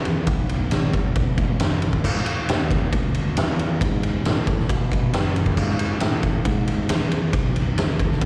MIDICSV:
0, 0, Header, 1, 4, 480
1, 0, Start_track
1, 0, Tempo, 440852
1, 304, Time_signature, 4, 2, 24, 8
1, 8988, End_track
2, 0, Start_track
2, 0, Title_t, "Fingered electric bass"
2, 0, Program_c, 0, 33
2, 0, Note_on_c, 0, 40, 94
2, 285, Note_off_c, 0, 40, 0
2, 294, Note_on_c, 0, 35, 96
2, 766, Note_off_c, 0, 35, 0
2, 786, Note_on_c, 0, 32, 83
2, 1252, Note_off_c, 0, 32, 0
2, 1261, Note_on_c, 0, 28, 81
2, 1730, Note_off_c, 0, 28, 0
2, 1741, Note_on_c, 0, 30, 98
2, 2210, Note_off_c, 0, 30, 0
2, 2223, Note_on_c, 0, 32, 95
2, 2448, Note_off_c, 0, 32, 0
2, 2704, Note_on_c, 0, 39, 89
2, 3172, Note_off_c, 0, 39, 0
2, 3187, Note_on_c, 0, 38, 77
2, 3653, Note_off_c, 0, 38, 0
2, 3663, Note_on_c, 0, 40, 97
2, 4131, Note_off_c, 0, 40, 0
2, 4148, Note_on_c, 0, 44, 92
2, 4613, Note_off_c, 0, 44, 0
2, 4630, Note_on_c, 0, 45, 86
2, 5095, Note_off_c, 0, 45, 0
2, 5105, Note_on_c, 0, 47, 74
2, 5572, Note_off_c, 0, 47, 0
2, 5590, Note_on_c, 0, 42, 97
2, 6054, Note_off_c, 0, 42, 0
2, 6067, Note_on_c, 0, 44, 94
2, 6532, Note_off_c, 0, 44, 0
2, 6548, Note_on_c, 0, 45, 88
2, 7012, Note_off_c, 0, 45, 0
2, 7031, Note_on_c, 0, 44, 79
2, 7493, Note_off_c, 0, 44, 0
2, 7513, Note_on_c, 0, 40, 96
2, 7974, Note_off_c, 0, 40, 0
2, 7983, Note_on_c, 0, 35, 90
2, 8448, Note_off_c, 0, 35, 0
2, 8468, Note_on_c, 0, 38, 79
2, 8931, Note_off_c, 0, 38, 0
2, 8945, Note_on_c, 0, 37, 81
2, 8988, Note_off_c, 0, 37, 0
2, 8988, End_track
3, 0, Start_track
3, 0, Title_t, "Muted fingered electric bass strokes"
3, 2456, Note_on_c, 9, 29, 39
3, 2565, Note_off_c, 9, 29, 0
3, 8988, End_track
4, 0, Start_track
4, 0, Title_t, "Drums"
4, 55, Note_on_c, 9, 51, 69
4, 164, Note_off_c, 9, 51, 0
4, 290, Note_on_c, 9, 51, 92
4, 297, Note_on_c, 9, 36, 112
4, 399, Note_off_c, 9, 51, 0
4, 406, Note_off_c, 9, 36, 0
4, 537, Note_on_c, 9, 51, 74
4, 646, Note_off_c, 9, 51, 0
4, 773, Note_on_c, 9, 51, 91
4, 784, Note_on_c, 9, 38, 105
4, 882, Note_off_c, 9, 51, 0
4, 893, Note_off_c, 9, 38, 0
4, 1018, Note_on_c, 9, 36, 88
4, 1021, Note_on_c, 9, 51, 68
4, 1127, Note_off_c, 9, 36, 0
4, 1130, Note_off_c, 9, 51, 0
4, 1258, Note_on_c, 9, 51, 86
4, 1261, Note_on_c, 9, 36, 117
4, 1366, Note_off_c, 9, 51, 0
4, 1370, Note_off_c, 9, 36, 0
4, 1499, Note_on_c, 9, 51, 71
4, 1501, Note_on_c, 9, 36, 84
4, 1608, Note_off_c, 9, 51, 0
4, 1609, Note_off_c, 9, 36, 0
4, 1738, Note_on_c, 9, 51, 101
4, 1749, Note_on_c, 9, 38, 110
4, 1847, Note_off_c, 9, 51, 0
4, 1857, Note_off_c, 9, 38, 0
4, 1981, Note_on_c, 9, 51, 69
4, 2090, Note_off_c, 9, 51, 0
4, 2101, Note_on_c, 9, 36, 77
4, 2210, Note_off_c, 9, 36, 0
4, 2224, Note_on_c, 9, 36, 102
4, 2227, Note_on_c, 9, 49, 106
4, 2333, Note_off_c, 9, 36, 0
4, 2336, Note_off_c, 9, 49, 0
4, 2363, Note_on_c, 9, 38, 33
4, 2460, Note_on_c, 9, 51, 82
4, 2472, Note_off_c, 9, 38, 0
4, 2569, Note_off_c, 9, 51, 0
4, 2707, Note_on_c, 9, 51, 100
4, 2718, Note_on_c, 9, 38, 117
4, 2816, Note_off_c, 9, 51, 0
4, 2827, Note_off_c, 9, 38, 0
4, 2946, Note_on_c, 9, 36, 82
4, 2952, Note_on_c, 9, 51, 75
4, 3055, Note_off_c, 9, 36, 0
4, 3061, Note_off_c, 9, 51, 0
4, 3186, Note_on_c, 9, 36, 105
4, 3187, Note_on_c, 9, 51, 90
4, 3295, Note_off_c, 9, 36, 0
4, 3296, Note_off_c, 9, 51, 0
4, 3424, Note_on_c, 9, 51, 75
4, 3532, Note_off_c, 9, 51, 0
4, 3665, Note_on_c, 9, 51, 107
4, 3676, Note_on_c, 9, 38, 123
4, 3774, Note_off_c, 9, 51, 0
4, 3785, Note_off_c, 9, 38, 0
4, 3911, Note_on_c, 9, 51, 74
4, 4020, Note_off_c, 9, 51, 0
4, 4148, Note_on_c, 9, 36, 112
4, 4154, Note_on_c, 9, 51, 100
4, 4257, Note_off_c, 9, 36, 0
4, 4263, Note_off_c, 9, 51, 0
4, 4390, Note_on_c, 9, 51, 75
4, 4499, Note_off_c, 9, 51, 0
4, 4630, Note_on_c, 9, 51, 91
4, 4641, Note_on_c, 9, 38, 107
4, 4739, Note_off_c, 9, 51, 0
4, 4750, Note_off_c, 9, 38, 0
4, 4867, Note_on_c, 9, 51, 71
4, 4869, Note_on_c, 9, 36, 86
4, 4976, Note_off_c, 9, 51, 0
4, 4977, Note_off_c, 9, 36, 0
4, 5006, Note_on_c, 9, 38, 32
4, 5111, Note_on_c, 9, 36, 108
4, 5115, Note_off_c, 9, 38, 0
4, 5116, Note_on_c, 9, 51, 94
4, 5220, Note_off_c, 9, 36, 0
4, 5225, Note_off_c, 9, 51, 0
4, 5353, Note_on_c, 9, 36, 86
4, 5366, Note_on_c, 9, 51, 72
4, 5462, Note_off_c, 9, 36, 0
4, 5475, Note_off_c, 9, 51, 0
4, 5590, Note_on_c, 9, 51, 97
4, 5601, Note_on_c, 9, 38, 118
4, 5699, Note_off_c, 9, 51, 0
4, 5710, Note_off_c, 9, 38, 0
4, 5836, Note_on_c, 9, 51, 72
4, 5945, Note_off_c, 9, 51, 0
4, 5947, Note_on_c, 9, 36, 81
4, 6056, Note_off_c, 9, 36, 0
4, 6067, Note_on_c, 9, 36, 102
4, 6067, Note_on_c, 9, 49, 98
4, 6176, Note_off_c, 9, 36, 0
4, 6176, Note_off_c, 9, 49, 0
4, 6200, Note_on_c, 9, 38, 33
4, 6306, Note_on_c, 9, 51, 81
4, 6309, Note_off_c, 9, 38, 0
4, 6415, Note_off_c, 9, 51, 0
4, 6537, Note_on_c, 9, 51, 99
4, 6547, Note_on_c, 9, 38, 109
4, 6645, Note_off_c, 9, 51, 0
4, 6656, Note_off_c, 9, 38, 0
4, 6783, Note_on_c, 9, 51, 75
4, 6785, Note_on_c, 9, 36, 79
4, 6892, Note_off_c, 9, 51, 0
4, 6894, Note_off_c, 9, 36, 0
4, 7025, Note_on_c, 9, 36, 110
4, 7025, Note_on_c, 9, 51, 93
4, 7133, Note_off_c, 9, 51, 0
4, 7134, Note_off_c, 9, 36, 0
4, 7268, Note_on_c, 9, 51, 78
4, 7377, Note_off_c, 9, 51, 0
4, 7502, Note_on_c, 9, 51, 114
4, 7513, Note_on_c, 9, 38, 117
4, 7611, Note_off_c, 9, 51, 0
4, 7622, Note_off_c, 9, 38, 0
4, 7747, Note_on_c, 9, 51, 78
4, 7856, Note_off_c, 9, 51, 0
4, 7984, Note_on_c, 9, 36, 114
4, 7984, Note_on_c, 9, 51, 107
4, 8093, Note_off_c, 9, 36, 0
4, 8093, Note_off_c, 9, 51, 0
4, 8230, Note_on_c, 9, 51, 72
4, 8339, Note_off_c, 9, 51, 0
4, 8467, Note_on_c, 9, 51, 97
4, 8478, Note_on_c, 9, 38, 105
4, 8576, Note_off_c, 9, 51, 0
4, 8587, Note_off_c, 9, 38, 0
4, 8705, Note_on_c, 9, 36, 88
4, 8709, Note_on_c, 9, 51, 68
4, 8813, Note_off_c, 9, 36, 0
4, 8818, Note_off_c, 9, 51, 0
4, 8839, Note_on_c, 9, 38, 32
4, 8943, Note_on_c, 9, 51, 91
4, 8944, Note_on_c, 9, 36, 115
4, 8948, Note_off_c, 9, 38, 0
4, 8988, Note_off_c, 9, 36, 0
4, 8988, Note_off_c, 9, 51, 0
4, 8988, End_track
0, 0, End_of_file